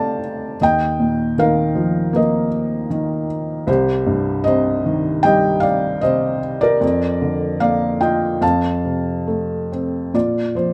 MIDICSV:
0, 0, Header, 1, 2, 480
1, 0, Start_track
1, 0, Key_signature, -2, "major"
1, 0, Tempo, 772201
1, 375, Time_signature, 4, 2, 24, 8
1, 2771, Tempo, 789474
1, 4691, Tempo, 809717
1, 5171, Tempo, 849858
1, 6474, End_track
2, 0, Start_track
2, 0, Title_t, "Felt piano"
2, 0, Program_c, 0, 0
2, 0, Control_c, 0, 64, 127
2, 0, Note_on_c, 0, 43, 48
2, 0, Note_on_c, 0, 57, 48
2, 0, Note_on_c, 0, 62, 42
2, 0, Note_on_c, 0, 67, 47
2, 0, Note_on_c, 0, 74, 59
2, 0, Note_on_c, 0, 77, 64
2, 0, Note_on_c, 0, 79, 76
2, 0, Note_on_c, 0, 81, 81
2, 109, Note_off_c, 0, 62, 0
2, 346, Note_off_c, 0, 67, 0
2, 353, Note_off_c, 0, 43, 0
2, 359, Note_off_c, 0, 57, 0
2, 360, Note_off_c, 0, 74, 0
2, 380, Note_on_c, 0, 39, 54
2, 383, Control_c, 0, 64, 0
2, 383, Note_on_c, 0, 75, 64
2, 387, Note_off_c, 0, 79, 0
2, 388, Note_off_c, 0, 77, 0
2, 393, Note_on_c, 0, 79, 82
2, 400, Note_off_c, 0, 81, 0
2, 476, Control_c, 0, 64, 127
2, 618, Note_on_c, 0, 46, 42
2, 836, Note_off_c, 0, 75, 0
2, 841, Note_off_c, 0, 79, 0
2, 858, Note_on_c, 0, 51, 51
2, 864, Note_on_c, 0, 70, 58
2, 867, Note_on_c, 0, 77, 81
2, 1090, Note_on_c, 0, 53, 52
2, 1311, Note_off_c, 0, 70, 0
2, 1324, Note_on_c, 0, 58, 59
2, 1341, Note_on_c, 0, 75, 65
2, 1343, Note_on_c, 0, 70, 53
2, 1351, Note_off_c, 0, 77, 0
2, 1544, Note_off_c, 0, 46, 0
2, 1784, Note_off_c, 0, 51, 0
2, 1788, Note_off_c, 0, 70, 0
2, 1788, Note_off_c, 0, 75, 0
2, 1804, Note_on_c, 0, 51, 52
2, 2020, Note_off_c, 0, 53, 0
2, 2258, Note_off_c, 0, 58, 0
2, 2264, Note_off_c, 0, 39, 0
2, 2270, Note_off_c, 0, 51, 0
2, 2281, Note_on_c, 0, 36, 63
2, 2285, Note_on_c, 0, 72, 70
2, 2294, Control_c, 0, 64, 0
2, 2296, Note_on_c, 0, 67, 63
2, 2403, Control_c, 0, 64, 127
2, 2527, Note_on_c, 0, 43, 55
2, 2744, Note_off_c, 0, 72, 0
2, 2750, Note_off_c, 0, 67, 0
2, 2759, Note_on_c, 0, 75, 82
2, 2776, Note_on_c, 0, 48, 64
2, 2776, Note_on_c, 0, 72, 61
2, 3014, Note_on_c, 0, 51, 54
2, 3225, Note_off_c, 0, 72, 0
2, 3240, Note_on_c, 0, 79, 93
2, 3245, Note_off_c, 0, 75, 0
2, 3250, Note_on_c, 0, 55, 62
2, 3255, Note_on_c, 0, 75, 66
2, 3460, Note_off_c, 0, 43, 0
2, 3467, Note_on_c, 0, 77, 84
2, 3471, Note_off_c, 0, 75, 0
2, 3483, Note_on_c, 0, 74, 63
2, 3487, Note_off_c, 0, 79, 0
2, 3703, Note_off_c, 0, 48, 0
2, 3708, Note_off_c, 0, 74, 0
2, 3717, Note_on_c, 0, 75, 77
2, 3724, Note_off_c, 0, 77, 0
2, 3726, Note_on_c, 0, 48, 53
2, 3727, Note_on_c, 0, 72, 66
2, 3946, Note_off_c, 0, 51, 0
2, 4060, Note_off_c, 0, 75, 0
2, 4066, Note_off_c, 0, 72, 0
2, 4080, Note_on_c, 0, 74, 84
2, 4092, Note_on_c, 0, 70, 71
2, 4182, Note_off_c, 0, 36, 0
2, 4187, Note_off_c, 0, 55, 0
2, 4196, Note_off_c, 0, 48, 0
2, 4201, Note_on_c, 0, 41, 57
2, 4218, Control_c, 0, 64, 0
2, 4315, Control_c, 0, 64, 127
2, 4448, Note_on_c, 0, 50, 47
2, 4660, Note_off_c, 0, 74, 0
2, 4666, Note_off_c, 0, 70, 0
2, 4683, Note_on_c, 0, 77, 79
2, 4687, Note_on_c, 0, 58, 45
2, 4693, Note_on_c, 0, 74, 65
2, 4905, Note_off_c, 0, 77, 0
2, 4911, Note_off_c, 0, 74, 0
2, 4922, Note_on_c, 0, 79, 73
2, 4924, Note_on_c, 0, 65, 43
2, 4928, Note_on_c, 0, 75, 56
2, 5141, Note_off_c, 0, 41, 0
2, 5147, Note_off_c, 0, 50, 0
2, 5154, Note_off_c, 0, 58, 0
2, 5154, Note_off_c, 0, 75, 0
2, 5161, Note_off_c, 0, 65, 0
2, 5164, Note_on_c, 0, 41, 57
2, 5166, Note_on_c, 0, 77, 55
2, 5169, Note_on_c, 0, 81, 76
2, 5175, Note_off_c, 0, 79, 0
2, 5178, Control_c, 0, 64, 0
2, 5265, Control_c, 0, 64, 127
2, 5410, Note_on_c, 0, 48, 37
2, 5650, Note_on_c, 0, 57, 42
2, 5878, Note_off_c, 0, 77, 0
2, 5880, Note_off_c, 0, 81, 0
2, 5903, Note_on_c, 0, 60, 40
2, 6115, Note_off_c, 0, 41, 0
2, 6118, Note_off_c, 0, 48, 0
2, 6122, Note_off_c, 0, 57, 0
2, 6133, Note_off_c, 0, 60, 0
2, 6138, Note_on_c, 0, 46, 44
2, 6142, Note_on_c, 0, 65, 42
2, 6143, Note_on_c, 0, 74, 61
2, 6148, Control_c, 0, 64, 0
2, 6263, Control_c, 0, 64, 127
2, 6358, Note_off_c, 0, 74, 0
2, 6372, Note_on_c, 0, 53, 33
2, 6379, Note_on_c, 0, 72, 57
2, 6474, Note_off_c, 0, 46, 0
2, 6474, Note_off_c, 0, 53, 0
2, 6474, Note_off_c, 0, 65, 0
2, 6474, Note_off_c, 0, 72, 0
2, 6474, End_track
0, 0, End_of_file